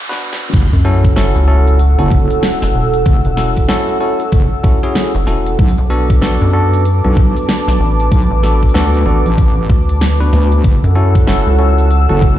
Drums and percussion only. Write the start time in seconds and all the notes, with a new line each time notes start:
0.11 snare
0.33 snare
0.54 kick, closed hi-hat, crash
0.63 closed hi-hat
0.68 closed hi-hat
0.73 closed hi-hat
1.04 kick, closed hi-hat
1.17 snare, closed hi-hat
1.36 closed hi-hat
1.68 closed hi-hat
1.79 closed hi-hat
2.11 kick
2.31 closed hi-hat
2.43 snare, closed hi-hat
2.62 snare, closed hi-hat
2.94 closed hi-hat
3.06 kick, closed hi-hat
3.25 closed hi-hat
3.37 snare
3.57 kick, closed hi-hat
3.69 snare, closed hi-hat
3.88 closed hi-hat
4.20 closed hi-hat
4.32 kick, closed hi-hat
4.64 kick
4.83 closed hi-hat
4.95 snare, closed hi-hat
5.15 closed hi-hat
5.27 snare
5.47 closed hi-hat
5.59 kick
5.68 closed hi-hat
5.78 closed hi-hat
6.10 kick, closed hi-hat
6.22 snare, closed hi-hat
6.42 closed hi-hat
6.74 closed hi-hat
6.85 closed hi-hat
7.17 kick
7.37 closed hi-hat
7.49 snare, closed hi-hat
7.68 snare, closed hi-hat
8.00 closed hi-hat
8.12 kick, closed hi-hat
8.22 closed hi-hat
8.44 snare
8.63 kick
8.69 closed hi-hat
8.75 snare, closed hi-hat
8.95 closed hi-hat
9.26 closed hi-hat
9.38 kick, closed hi-hat
9.70 kick
9.89 closed hi-hat
10.01 snare, closed hi-hat
10.21 closed hi-hat
10.33 snare
10.52 closed hi-hat
10.64 kick, closed hi-hat
10.84 closed hi-hat
11.15 kick, closed hi-hat
11.28 snare, closed hi-hat
11.47 closed hi-hat
11.78 closed hi-hat
11.91 closed hi-hat
12.22 kick